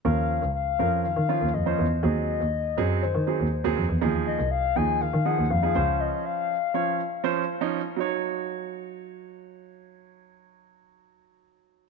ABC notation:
X:1
M:4/4
L:1/16
Q:1/4=121
K:Ebdor
V:1 name="Soft synth lead"
f4 f4 f4 e4 | e8 c6 z2 | z2 e2 f2 a2 f2 g2 f4 | e2 f8 z6 |
z16 | z16 |]
V:2 name="Grand piano"
[F,DB]3 z3 [F,DB]2 z2 [F,DF]2 z [F,Dc]2 z | [G,CA]3 z3 [G,CA]2 z2 [G,CA]2 z [G,CA]2 z | [F,EA]3 z3 [F,EA]2 z2 [F,EA]2 z [F,EA] [F,Dc]2- | [F,Dc]4 z2 [F,Dd]2 z2 [F,Dc]2 z [F,DE]2 z |
[G,Ed]16- | [G,Ed]16 |]
V:3 name="Double bass" clef=bass
E,,3 D,,2 z F,,2 E, E, z E,, F,,2 _F,,2 | E,,3 E,,2 z G,,2 E, E, z E,, z E,, F,, _F,, | E,,3 C,,2 z E,,2 E, E, z E,, F,,2 D,,2 | z16 |
z16 | z16 |]